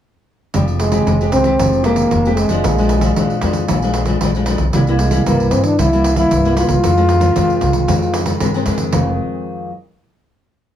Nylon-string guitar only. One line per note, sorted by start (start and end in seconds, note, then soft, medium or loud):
0.54 1.04 F3 soft
0.54 0.89 G#3 soft
0.54 0.90 C4 soft
0.54 0.90 G4 medium
0.92 1.15 G#3 medium
0.92 1.15 C4 medium
0.92 1.15 G4 medium
1.07 1.57 C3 medium
1.21 1.42 G#3 medium
1.21 1.43 C4 medium
1.21 1.43 G4 medium
1.45 1.54 G#3 medium
1.45 1.55 C4 medium
1.45 1.55 G4 medium
1.60 2.09 F3 medium
1.60 1.82 G#3 soft
1.60 1.82 C4 soft
1.60 1.82 G4 medium
1.85 2.10 G#3 medium
1.85 2.10 C4 medium
1.85 2.10 G4 medium
2.12 2.62 C3 medium
2.26 2.47 G#3 medium
2.26 2.48 C4 medium
2.26 2.48 G4 medium
2.50 2.77 F3 medium
2.50 2.78 G#3 medium
2.50 2.78 D4 medium
2.65 3.14 A#2 soft
2.79 3.00 F3 medium
2.79 3.00 G#3 medium
2.79 3.00 D4 medium
3.02 3.12 F3 medium
3.02 3.12 G#3 medium
3.02 3.12 D4 medium
3.17 3.67 F2 soft
3.17 3.39 F3 soft
3.17 3.39 G#3 soft
3.17 3.39 D4 soft
3.42 3.64 F3 medium
3.42 3.65 G#3 medium
3.42 3.65 D4 medium
3.69 4.19 A#2 soft
3.69 3.77 F3 soft
3.69 3.77 G#3 soft
3.69 3.77 D4 medium
3.83 4.05 F3 medium
3.83 4.05 G#3 medium
3.83 4.05 D4 medium
4.07 4.17 F3 medium
4.07 4.17 G#3 soft
4.07 4.17 D4 medium
4.22 4.71 F2 medium
4.22 4.30 F3 medium
4.22 4.30 G#3 soft
4.22 4.30 D4 medium
4.36 4.44 F3 medium
4.36 4.44 G#3 medium
4.36 4.44 D4 medium
4.46 4.64 F3 medium
4.46 4.64 G#3 medium
4.46 4.64 D4 medium
4.74 5.24 C3 medium
4.74 4.82 G3 medium
4.74 4.82 A#3 medium
4.74 4.82 E4 medium
4.88 5.10 G3 medium
4.88 5.10 A#3 medium
4.88 5.10 E4 medium
5.11 5.21 G3 medium
5.11 5.21 A#3 medium
5.11 5.22 E4 medium
5.27 5.76 G2 medium
5.27 5.60 G3 medium
5.27 5.60 A#3 medium
5.27 5.61 E4 medium
5.79 6.29 C3 medium
5.79 5.87 G3 soft
5.79 5.87 A#3 soft
5.79 5.87 E4 medium
5.93 6.14 G3 medium
5.93 6.15 A#3 medium
5.93 6.15 E4 medium
6.16 6.39 G3 medium
6.16 6.39 A#3 medium
6.16 6.39 E4 medium
6.32 6.81 G2 medium
6.45 6.53 G3 medium
6.45 6.54 A#3 medium
6.45 6.54 E4 medium
6.56 6.74 G3 soft
6.56 6.74 A#3 medium
6.56 6.74 E4 medium
6.84 7.33 F2 medium
6.84 6.91 D#3 soft
6.84 6.92 G#3 soft
6.84 6.92 C4 medium
6.97 7.19 D#3 medium
6.97 7.19 G#3 medium
6.97 7.19 C4 medium
7.20 7.30 D#3 medium
7.20 7.30 G#3 medium
7.20 7.31 C4 medium
7.35 7.86 C3 medium
7.35 7.84 D#3 soft
7.35 7.84 G#3 soft
7.35 7.84 C4 medium
7.88 8.38 F2 soft
7.88 8.23 D#3 soft
7.88 8.24 G#3 medium
7.88 8.24 C4 medium
8.26 8.35 D#3 soft
8.26 8.36 G#3 soft
8.26 8.36 C4 medium
8.41 8.91 C3 soft
8.41 8.49 D#3 medium
8.41 8.49 G#3 medium
8.41 8.49 C4 medium
8.55 8.63 D#3 medium
8.55 8.63 G#3 medium
8.55 8.63 C4 medium
8.66 8.91 D#3 soft
8.66 8.91 G#3 medium
8.66 8.91 C4 medium
8.93 9.70 F2 medium
8.93 9.70 D#3 medium
8.93 9.70 G#3 medium
8.93 9.70 C4 medium